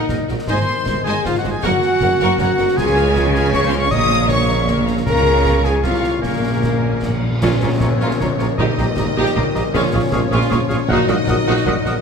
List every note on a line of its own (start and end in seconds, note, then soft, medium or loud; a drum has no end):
0.00 0.49 A#2 medium
0.00 0.49 F#3 soft
0.00 0.50 A#3 soft
0.00 0.27 D#4 medium
0.00 0.29 D#4 medium
0.00 0.37 F#4 soft
0.00 0.19 A#4 medium
0.00 0.27 D#5 medium
0.00 0.28 D#5 soft
0.00 0.29 D#5 medium
0.00 1.15 D#6 soft
0.08 0.16 A#1 soft
0.08 0.17 A#1 medium
0.08 0.18 A#2 soft
0.08 0.17 D#4 soft
0.08 0.17 A#4 soft
0.08 0.18 A#4 medium
0.08 0.18 D#5 medium
0.08 0.50 F#5 medium
0.08 concert bass drum medium
0.08 snare medium
0.20 0.50 A#4 medium
0.28 0.37 A#1 soft
0.28 0.37 A#1 medium
0.28 0.38 A#2 soft
0.28 0.37 D#4 medium
0.28 0.37 F#4 medium
0.28 0.36 A#4 medium
0.28 0.37 A#4 medium
0.28 0.86 D#5 medium
0.28 snare soft
0.38 0.50 F#4 medium
0.38 snare medium
0.47 0.55 G#1 medium
0.47 0.56 G#1 medium
0.47 1.65 G#2 medium
0.47 0.56 G#2 medium
0.47 0.66 D#4 medium
0.47 0.65 C5 medium
0.47 1.02 C5 medium
0.47 1.02 C5 loud
0.47 0.67 D#5 medium
0.47 0.67 G#5 medium
0.47 1.01 C6 medium
0.47 1.02 C6 medium
0.47 concert bass drum medium
0.47 snare medium
0.57 1.64 D#3 soft
0.57 snare soft
0.67 1.65 C4 soft
0.67 snare soft
0.77 1.53 D#4 medium
0.86 0.95 G#1 medium
0.86 0.95 G#2 medium
0.86 0.95 D#4 medium
0.86 0.97 G#4 medium
0.86 0.95 C5 medium
0.86 0.96 C5 medium
0.86 1.05 D#5 medium
0.86 concert bass drum medium
0.86 snare medium
0.97 1.34 C5 medium
1.04 1.14 G#1 medium
1.04 1.13 G#2 medium
1.04 1.23 D#4 medium
1.04 1.13 G#4 medium
1.04 1.24 G#4 medium
1.04 1.24 C5 medium
1.04 1.24 D#5 medium
1.04 1.11 G#5 medium
1.04 1.24 G#5 medium
1.04 snare soft
1.08 1.25 G#5 medium
1.16 1.65 D#6 medium
1.25 1.33 G#1 medium
1.25 1.34 G#1 medium
1.25 1.33 G#2 medium
1.25 1.33 D#4 medium
1.25 1.38 F4 loud
1.25 1.37 F4 medium
1.25 1.33 C5 medium
1.25 1.34 C5 medium
1.25 1.44 D#5 medium
1.25 1.34 D#5 medium
1.25 1.38 F5 medium
1.25 concert bass drum medium
1.25 snare medium
1.35 1.50 F#4 medium
1.35 1.51 F#4 medium
1.35 1.43 F#5 medium
1.35 snare soft
1.39 1.45 F#5 medium
1.44 1.52 G#1 medium
1.44 1.53 G#1 medium
1.44 1.52 G#2 medium
1.44 1.52 D#4 medium
1.44 1.52 G#4 medium
1.44 1.52 C5 medium
1.44 1.65 D#5 medium
1.44 snare soft
1.51 1.65 D#4 soft
1.51 1.65 G#4 medium
1.51 1.57 G#4 medium
1.51 1.56 G#5 medium
1.51 1.63 G#5 medium
1.63 1.71 F#1 medium
1.63 2.79 F#2 medium
1.63 1.72 F#2 medium
1.63 1.81 A#3 medium
1.63 2.38 F#4 loud
1.63 2.39 F#4 medium
1.63 1.81 A#4 medium
1.63 1.81 F#5 medium
1.63 2.39 F#5 medium
1.63 2.38 F#5 medium
1.63 1.81 C#6 medium
1.63 concert bass drum medium
1.63 snare medium
1.73 2.76 C#3 medium
1.82 5.09 C#4 medium
1.82 snare soft
1.93 2.67 F#4 medium
2.01 2.09 F#1 medium
2.01 2.10 F#1 medium
2.01 2.10 F#2 medium
2.01 2.10 A#3 medium
2.01 2.09 A#4 medium
2.01 2.57 A#4 medium
2.01 2.10 A#4 medium
2.01 2.10 F#5 medium
2.01 concert bass drum medium
2.01 snare medium
2.12 2.49 C#5 medium
2.20 2.28 F#1 medium
2.20 2.29 F#2 medium
2.20 2.38 A#3 loud
2.20 2.38 A#4 medium
2.20 2.38 F#5 medium
2.20 2.38 C#6 medium
2.20 snare soft
2.30 2.79 A#5 medium
2.38 2.47 F#1 medium
2.38 2.47 F#2 medium
2.38 2.47 A#3 medium
2.38 2.77 F#4 loud
2.38 2.79 F#4 medium
2.38 2.48 A#4 medium
2.38 2.47 C#5 medium
2.38 2.76 F#5 medium
2.38 2.79 F#5 medium
2.38 2.77 F#5 medium
2.38 2.47 A#5 medium
2.38 concert bass drum medium
2.38 snare medium
2.50 3.15 C#5 medium
2.58 2.66 F#1 medium
2.58 2.66 F#2 medium
2.58 2.67 A#3 medium
2.58 2.65 A#4 medium
2.58 2.79 A#4 medium
2.58 2.66 A#4 medium
2.58 2.65 F#5 medium
2.58 snare medium
2.68 2.79 F#4 medium
2.68 snare medium
2.76 3.88 C#2 medium
2.76 3.94 C#3 medium
2.76 3.89 C#3 medium
2.76 2.95 F4 medium
2.76 2.95 G#4 medium
2.76 3.33 G#4 loud
2.76 3.32 G#4 loud
2.76 3.33 G#5 medium
2.76 2.95 G#5 medium
2.76 3.34 G#5 medium
2.76 2.95 C#6 medium
2.76 concert bass drum medium
2.76 snare medium
2.76 crash soft
2.87 3.94 G#3 medium
2.87 snare medium
2.96 3.15 C#4 medium
2.96 3.15 F4 medium
2.96 3.16 F5 medium
2.96 3.16 F6 medium
2.96 snare soft
3.06 3.24 F4 medium
3.16 3.35 F4 medium
3.16 3.35 G#4 medium
3.16 3.35 G#5 medium
3.16 3.35 C#6 medium
3.16 concert bass drum medium
3.16 snare medium
3.25 3.72 F4 medium
3.33 3.55 C#4 medium
3.33 3.53 F4 medium
3.33 3.53 G#4 loud
3.33 3.53 F5 medium
3.33 3.54 F5 medium
3.33 3.41 G#5 loud
3.33 3.54 F6 medium
3.33 snare medium
3.37 3.55 G#5 medium
3.45 4.58 C#6 medium
3.53 3.72 F4 medium
3.53 3.72 G#4 medium
3.53 3.66 C#5 loud
3.53 3.67 C#5 loud
3.53 4.48 F5 medium
3.53 3.72 G#5 medium
3.53 3.72 C#6 medium
3.53 3.67 C#6 medium
3.53 3.61 C#6 loud
3.53 concert bass drum medium
3.53 snare medium
3.63 3.72 C5 medium
3.63 3.79 C5 loud
3.63 4.29 C#5 medium
3.63 snare soft
3.68 3.91 F5 medium
3.68 3.78 C6 medium
3.68 3.73 C6 medium
3.68 3.91 F6 medium
3.73 3.93 C#4 medium
3.73 4.20 F4 medium
3.73 3.92 F4 medium
3.73 snare medium
3.78 3.90 C#5 loud
3.78 3.92 C#5 loud
3.78 3.93 C#6 medium
3.83 7.44 A#3 medium
3.91 5.04 A#1 medium
3.91 5.05 A#1 medium
3.91 4.45 A#2 medium
3.91 5.08 A#2 medium
3.91 5.05 A#2 medium
3.91 4.10 A#3 medium
3.91 4.10 A#4 medium
3.91 4.09 C#5 medium
3.91 4.30 D#5 loud
3.91 4.09 C#6 medium
3.91 4.30 D#6 loud
3.91 4.31 D#6 loud
3.91 concert bass drum medium
3.91 snare medium
4.02 6.31 F3 medium
4.10 4.30 C#4 medium
4.10 4.30 C#5 medium
4.10 4.30 F5 medium
4.10 4.30 A#5 medium
4.10 snare soft
4.21 4.39 F4 medium
4.28 4.49 A#3 medium
4.28 4.49 A#4 medium
4.28 4.68 C#5 loud
4.28 4.49 C#5 medium
4.28 4.68 C#5 loud
4.28 4.48 C#6 medium
4.28 4.68 C#6 loud
4.28 4.68 C#6 medium
4.28 concert bass drum medium
4.28 snare medium
4.40 4.86 F4 medium
4.48 4.69 C#4 medium
4.48 4.69 C#5 medium
4.48 4.68 F5 medium
4.48 4.67 F5 medium
4.48 4.68 A#5 medium
4.48 snare soft
4.66 4.86 A#3 medium
4.66 4.86 A#4 medium
4.66 4.85 C#5 medium
4.66 4.85 C#6 medium
4.66 concert bass drum medium
4.66 snare medium
4.78 5.43 C#5 medium
4.86 5.06 C#4 medium
4.86 5.34 F4 medium
4.86 5.07 C#5 medium
4.86 5.04 F5 medium
4.86 5.06 A#5 medium
4.86 snare medium
4.97 snare medium
5.05 5.85 C#2 medium
5.05 5.80 C#2 medium
5.05 5.80 C#3 medium
5.05 5.80 C#4 medium
5.05 5.80 G#4 medium
5.05 5.66 A#4 loud
5.05 5.61 A#4 loud
5.05 5.79 F5 medium
5.05 5.66 A#5 medium
5.05 5.61 A#5 loud
5.05 5.79 C#6 medium
5.05 concert bass drum medium
5.05 snare medium
5.16 6.25 G#3 medium
5.16 snare medium
5.26 snare soft
5.35 5.53 F4 medium
5.45 5.93 C#5 medium
5.45 concert bass drum medium
5.45 snare medium
5.64 5.82 G#4 medium
5.64 5.85 G#4 medium
5.64 5.84 G#5 medium
5.64 5.73 G#5 medium
5.64 snare soft
5.74 6.92 C#6 medium
5.82 6.23 C2 medium
5.82 6.22 C2 medium
5.82 6.24 C3 medium
5.82 6.21 F4 medium
5.82 6.23 F4 medium
5.82 6.23 G#4 medium
5.82 6.23 C#5 medium
5.82 6.22 F5 medium
5.82 6.23 F5 medium
5.82 6.81 F5 medium
5.82 6.24 F5 medium
5.82 6.21 C#6 medium
5.82 concert bass drum medium
5.82 snare medium
5.94 6.61 C#5 medium
5.94 snare soft
6.03 6.52 F4 soft
6.03 snare medium
6.13 6.42 C#4 soft
6.22 7.20 A#1 medium
6.22 7.21 A#1 medium
6.22 7.40 A#2 medium
6.22 7.21 A#2 medium
6.22 6.31 A#2 soft
6.22 7.20 A#3 medium
6.22 7.22 A#3 medium
6.22 7.21 C#4 medium
6.22 7.23 A#4 soft
6.22 7.21 A#4 medium
6.22 7.22 A#4 medium
6.22 6.58 F5 medium
6.22 6.58 C#6 medium
6.22 concert bass drum medium
6.22 snare medium
6.32 6.38 A#2 soft
6.32 7.49 F3 soft
6.39 6.46 A#2 soft
6.39 7.30 C#4 soft
6.48 6.54 A#2 soft
6.53 6.61 A#2 soft
6.53 6.70 F4 soft
6.62 6.68 A#2 soft
6.62 7.11 C#5 soft
6.62 6.82 F5 medium
6.62 concert bass drum medium
6.62 snare medium
6.69 6.76 A#2 medium
6.69 7.20 F4 soft
6.77 6.83 A#2 medium
6.83 6.92 A#2 medium
6.83 7.01 F5 soft
6.83 7.03 G#5 medium
6.93 6.99 A#2 medium
6.93 8.08 C#6 soft
7.01 7.07 A#2 medium
7.01 7.98 F5 soft
7.01 7.23 F#5 medium
7.01 concert bass drum medium
7.01 snare medium
7.08 7.14 A#2 medium
7.12 7.21 A#2 medium
7.12 7.79 C#5 soft
7.22 7.29 A#2 medium
7.22 7.69 F4 soft
7.22 7.43 F5 medium
7.30 7.38 A#2 loud
7.30 8.60 C#4 soft
7.41 7.50 A#1 medium
7.41 7.96 A#2 loud
7.41 8.56 A#2 medium
7.41 7.50 A#2 loud
7.41 8.55 A#3 medium
7.41 8.55 C#4 medium
7.41 7.61 C#4 medium
7.41 7.61 F4 medium
7.41 7.52 F4 medium
7.41 7.51 C#5 medium
7.41 8.56 C#5 medium
7.41 7.50 A#5 medium
7.41 concert bass drum medium
7.41 snare medium
7.41 crash medium
7.41 tam-tam medium
7.50 8.47 F3 medium
7.60 7.70 A#1 medium
7.60 7.70 A#2 medium
7.60 8.76 A#3 medium
7.60 7.71 F4 medium
7.60 7.70 F4 medium
7.60 7.70 C#5 medium
7.60 7.70 A#5 medium
7.70 8.37 F4 medium
7.80 7.88 A#1 medium
7.80 7.89 A#1 medium
7.80 7.90 A#2 medium
7.80 7.89 F4 medium
7.80 7.91 F4 medium
7.80 7.90 A#4 medium
7.80 8.28 C#5 medium
7.80 7.90 C#5 medium
7.80 7.88 A#5 medium
7.80 concert bass drum medium
7.80 snare medium
7.89 8.17 A#4 medium
8.00 8.08 A#1 medium
8.00 8.09 A#1 medium
8.00 8.09 A#2 medium
8.00 8.19 C#4 medium
8.00 8.09 F4 medium
8.00 8.19 F4 medium
8.00 8.09 C#5 medium
8.00 8.60 F5 medium
8.00 8.09 A#5 medium
8.00 snare medium
8.09 8.60 C#6 medium
8.09 snare medium
8.19 8.28 A#1 medium
8.19 8.29 A#2 medium
8.19 8.29 F4 medium
8.19 8.30 F4 medium
8.19 9.05 A#4 medium
8.19 8.29 C#5 medium
8.19 8.28 A#5 medium
8.19 concert bass drum medium
8.19 snare medium
8.29 8.60 C#5 medium
8.39 8.47 A#1 medium
8.39 8.48 A#2 medium
8.39 8.46 F4 medium
8.39 8.60 F4 medium
8.39 8.48 F4 medium
8.39 8.48 A#4 medium
8.39 8.47 C#5 medium
8.39 8.47 A#5 medium
8.39 snare medium
8.48 8.60 F3 medium
8.57 8.67 A#1 loud
8.57 9.71 A#2 medium
8.57 9.13 A#2 loud
8.57 8.67 A#2 medium
8.57 9.75 G3 medium
8.57 9.75 D#4 medium
8.57 8.77 D#4 medium
8.57 8.77 G4 medium
8.57 8.68 G4 medium
8.57 8.66 D#5 medium
8.57 9.76 D#5 medium
8.57 8.65 A#5 medium
8.57 concert bass drum medium
8.67 9.62 G3 medium
8.77 8.85 A#1 medium
8.77 8.86 A#1 medium
8.77 8.86 A#2 medium
8.77 9.76 A#3 medium
8.77 8.86 G4 medium
8.77 8.87 G4 medium
8.77 8.86 D#5 medium
8.77 8.86 A#5 medium
8.77 snare medium
8.86 9.53 G4 medium
8.96 9.05 A#1 medium
8.96 9.05 A#2 medium
8.96 9.05 G4 medium
8.96 9.07 A#4 medium
8.96 9.43 D#5 medium
8.96 9.07 D#5 medium
8.96 9.05 A#5 medium
8.96 concert bass drum medium
8.96 snare medium
9.06 9.33 A#4 medium
9.16 9.24 A#1 loud
9.16 9.24 A#1 medium
9.16 9.25 A#2 loud
9.16 9.35 D#4 medium
9.16 9.25 G4 medium
9.16 9.35 G4 loud
9.16 9.26 D#5 medium
9.16 9.76 G5 medium
9.16 9.26 A#5 medium
9.25 9.76 D#6 medium
9.25 snare medium
9.34 9.43 A#1 medium
9.34 9.44 A#1 medium
9.34 9.43 A#2 medium
9.34 9.44 G4 medium
9.34 9.76 A#4 medium
9.34 9.44 D#5 medium
9.34 9.43 A#5 medium
9.34 concert bass drum medium
9.44 9.76 D#5 medium
9.54 9.63 A#1 medium
9.54 9.63 A#2 medium
9.54 9.76 G4 medium
9.54 9.64 G4 medium
9.54 9.63 G4 medium
9.54 9.63 A#4 medium
9.54 9.64 D#5 medium
9.54 9.62 A#5 medium
9.54 snare medium
9.63 9.75 G3 medium
9.72 9.81 A#1 loud
9.72 9.83 A#1 loud
9.72 10.88 A#2 loud
9.72 9.81 A#2 loud
9.72 10.87 F3 medium
9.72 10.86 C#4 medium
9.72 9.92 C#4 loud
9.72 9.93 F4 medium
9.72 9.83 G#4 medium
9.72 10.88 C#5 medium
9.72 9.83 F5 medium
9.72 concert bass drum medium
9.72 snare medium
9.72 crash soft
9.76 9.82 C#6 medium
9.82 10.78 F3 medium
9.92 10.01 A#1 medium
9.92 10.02 A#1 medium
9.92 10.02 A#2 medium
9.92 10.91 G#3 medium
9.92 10.01 F4 medium
9.92 10.02 F4 medium
9.92 10.02 G#4 medium
9.92 10.02 F5 medium
9.92 10.02 C#6 medium
10.02 10.69 F4 medium
10.11 10.20 A#1 medium
10.11 10.21 A#1 medium
10.11 10.21 A#2 medium
10.11 10.22 F4 medium
10.11 10.21 G#4 medium
10.11 10.59 C#5 medium
10.11 10.21 F5 medium
10.11 10.19 C#6 medium
10.11 concert bass drum medium
10.11 snare medium
10.21 10.49 G#4 medium
10.31 10.39 A#1 loud
10.31 10.40 A#2 loud
10.31 10.50 C#4 medium
10.31 10.50 F4 loud
10.31 10.40 G#4 medium
10.31 10.91 F5 medium
10.31 10.41 F5 medium
10.31 10.39 C#6 medium
10.31 snare medium
10.41 10.91 C#6 medium
10.41 snare medium
10.49 10.58 A#1 medium
10.49 10.59 A#1 medium
10.49 10.59 A#2 medium
10.49 10.58 F4 medium
10.49 10.60 F4 medium
10.49 10.59 G#4 medium
10.49 10.58 F5 medium
10.49 10.57 C#6 medium
10.49 concert bass drum medium
10.49 snare medium
10.60 10.91 C#5 medium
10.68 10.77 A#1 medium
10.68 10.78 A#1 medium
10.68 10.79 A#2 medium
10.68 10.91 F4 medium
10.68 10.79 F4 medium
10.68 10.78 G#4 medium
10.68 10.78 F5 medium
10.68 10.76 C#6 medium
10.68 snare medium
10.79 10.91 F3 medium
10.88 10.96 A#1 loud
10.88 10.97 A#1 loud
10.88 12.01 A#2 loud
10.88 10.97 A#2 loud
10.88 12.01 F#3 loud
10.88 12.01 D#4 loud
10.88 11.08 D#4 loud
10.88 11.07 F#4 loud
10.88 10.98 A#4 medium
10.88 12.01 D#5 loud
10.88 10.98 F#5 loud
10.88 concert bass drum medium
10.92 10.98 D#6 medium
10.99 11.93 F#3 medium
11.08 11.16 A#1 medium
11.08 11.17 A#1 medium
11.08 11.17 A#2 medium
11.08 12.01 A#3 medium
11.08 11.17 F#4 medium
11.08 11.17 A#4 medium
11.08 11.18 F#5 medium
11.08 11.16 D#6 medium
11.08 snare medium
11.18 11.83 F#4 medium
11.27 11.35 A#1 medium
11.27 11.36 A#1 medium
11.27 11.35 A#2 medium
11.27 11.36 F#4 medium
11.27 11.35 A#4 medium
11.27 11.37 A#4 medium
11.27 11.74 D#5 medium
11.27 11.37 F#5 medium
11.27 11.36 D#6 medium
11.27 concert bass drum medium
11.27 snare medium
11.37 11.65 A#4 medium
11.47 11.54 A#1 loud
11.47 11.55 A#1 loud
11.47 11.55 A#2 loud
11.47 11.65 D#4 loud
11.47 11.65 F#4 loud
11.47 11.57 A#4 medium
11.47 12.01 F#5 medium
11.47 11.56 F#5 medium
11.47 11.56 D#6 medium
11.56 12.01 D#6 medium
11.56 snare medium
11.66 11.74 A#1 medium
11.66 11.74 A#2 medium
11.66 11.74 F#4 medium
11.66 11.75 F#4 medium
11.66 12.01 A#4 medium
11.66 11.76 A#4 medium
11.66 11.75 F#5 medium
11.66 11.74 D#6 medium
11.66 concert bass drum medium
11.76 12.01 D#5 loud
11.84 11.93 A#1 medium
11.84 11.94 A#1 medium
11.84 11.93 A#2 medium
11.84 12.01 F#4 medium
11.84 11.94 F#4 medium
11.84 11.93 A#4 medium
11.84 11.96 A#4 medium
11.84 11.94 F#5 medium
11.84 11.93 D#6 medium
11.84 snare medium
11.95 12.01 F#3 medium